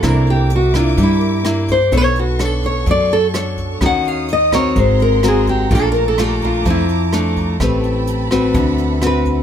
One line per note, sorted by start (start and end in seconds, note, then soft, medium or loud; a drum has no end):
0.03 0.94 C2 loud
0.03 0.95 C3 soft
0.03 0.50 A#3 medium
0.03 0.50 D4 medium
0.03 0.50 E4 medium
0.03 1.91 A#4 medium
0.03 1.91 E5 medium
0.03 1.91 D6 medium
0.03 kick medium
0.03 cross-stick medium
0.03 closed hi-hat soft
0.08 0.29 A#4 medium
0.27 0.52 G4 medium
0.27 closed hi-hat soft
0.50 closed hi-hat soft
0.56 0.76 F#4 medium
0.74 1.42 A#3 medium
0.74 1.42 D4 medium
0.74 1.42 E4 medium
0.74 0.99 F4 medium
0.74 kick soft
0.74 cross-stick medium
0.74 closed hi-hat soft
0.97 1.88 G2 loud
0.97 1.90 G3 medium
0.97 kick medium
0.97 closed hi-hat soft
1.03 1.45 E4 medium
1.21 closed hi-hat soft
1.45 1.77 A#3 medium
1.45 1.77 D4 medium
1.45 1.77 E4 medium
1.45 cross-stick medium
1.45 closed hi-hat soft
1.68 1.93 C5 medium
1.68 kick soft
1.68 closed hi-hat soft
1.92 2.83 B1 medium
1.92 2.85 B3 medium
1.92 2.23 D4 medium
1.92 2.23 A4 medium
1.92 3.80 A4 medium
1.92 2.23 C#5 medium
1.92 3.80 C#6 medium
1.92 kick medium
1.92 closed hi-hat soft
1.97 2.18 C#5 medium
2.16 2.41 F#4 medium
2.16 closed hi-hat soft
2.39 3.03 D4 medium
2.39 3.03 A4 medium
2.39 3.03 C#5 medium
2.39 cross-stick medium
2.39 closed hi-hat soft
2.45 2.65 A4 medium
2.63 2.88 C#5 medium
2.63 kick soft
2.63 closed hi-hat soft
2.86 3.77 F#2 medium
2.86 3.79 F#3 medium
2.86 kick medium
2.86 closed hi-hat soft
2.91 3.12 D5 medium
3.11 3.26 A4 medium
3.11 closed hi-hat soft
3.34 3.78 D4 medium
3.34 3.78 A4 medium
3.34 3.78 C#5 medium
3.34 cross-stick medium
3.34 closed hi-hat soft
3.58 kick soft
3.58 closed hi-hat soft
3.80 4.72 D#2 medium
3.80 4.74 D#3 medium
3.80 4.28 C#4 medium
3.80 4.29 F#4 medium
3.80 4.29 A#4 medium
3.80 4.75 C#5 medium
3.80 5.68 F#5 medium
3.80 4.75 D#6 medium
3.80 kick medium
3.80 cross-stick medium
3.80 closed hi-hat soft
3.86 4.08 F#5 medium
4.05 4.29 F5 medium
4.05 closed hi-hat soft
4.29 closed hi-hat soft
4.33 4.54 D#5 medium
4.52 5.20 C4 medium
4.52 5.20 F#4 medium
4.52 5.20 A#4 medium
4.52 4.80 C#5 medium
4.52 kick soft
4.52 cross-stick medium
4.52 closed hi-hat soft
4.76 5.67 G#1 loud
4.76 5.69 G#3 medium
4.76 5.01 C5 medium
4.76 7.57 A#5 medium
4.76 5.70 C6 medium
4.76 kick medium
4.76 closed hi-hat soft
5.00 5.24 A#4 medium
5.00 closed hi-hat soft
5.23 5.69 C4 medium
5.23 5.69 F#4 medium
5.23 5.69 A#4 medium
5.23 cross-stick medium
5.23 closed hi-hat soft
5.28 5.49 G#4 medium
5.47 5.71 G4 medium
5.47 kick soft
5.47 closed hi-hat soft
5.71 6.61 A#1 loud
5.71 6.63 A#2 medium
5.71 6.14 A3 medium
5.71 6.14 D4 soft
5.71 6.15 F4 medium
5.71 7.58 A5 medium
5.71 7.58 D6 medium
5.71 kick medium
5.71 closed hi-hat soft
5.75 5.88 A4 medium
5.92 6.05 A#4 medium
5.92 closed hi-hat soft
6.08 6.23 A4 medium
6.18 6.82 A3 medium
6.18 6.82 D4 medium
6.18 6.82 F4 medium
6.18 cross-stick medium
6.18 closed hi-hat soft
6.23 6.44 G4 medium
6.42 6.66 F4 medium
6.42 kick soft
6.42 closed hi-hat soft
6.65 7.56 F2 loud
6.65 7.58 F3 medium
6.65 kick medium
6.65 closed hi-hat soft
6.70 8.06 E4 medium
6.89 closed hi-hat soft
7.13 7.56 A3 medium
7.13 7.56 D4 medium
7.13 cross-stick medium
7.13 closed hi-hat soft
7.36 kick soft
7.36 closed hi-hat soft
7.60 8.50 A1 loud
7.60 8.52 A3 medium
7.60 8.27 C4 medium
7.60 8.28 G4 medium
7.60 8.28 B4 medium
7.60 8.54 G5 medium
7.60 9.43 A5 medium
7.60 9.43 B5 medium
7.60 kick medium
7.60 cross-stick medium
7.60 closed hi-hat soft
7.84 closed hi-hat soft
8.07 closed hi-hat soft
8.31 8.98 C4 medium
8.31 8.98 F#4 medium
8.31 8.98 B4 medium
8.31 kick soft
8.31 cross-stick medium
8.31 closed hi-hat soft
8.54 9.43 D2 loud
8.54 9.43 D3 medium
8.54 9.43 E5 medium
8.54 9.43 F#5 medium
8.54 kick medium
8.54 closed hi-hat soft
8.78 closed hi-hat soft
9.02 9.43 C4 medium
9.02 9.43 F#4 medium
9.02 9.43 B4 medium
9.02 cross-stick medium
9.02 closed hi-hat soft
9.07 9.43 B4 medium
9.25 kick soft
9.25 closed hi-hat soft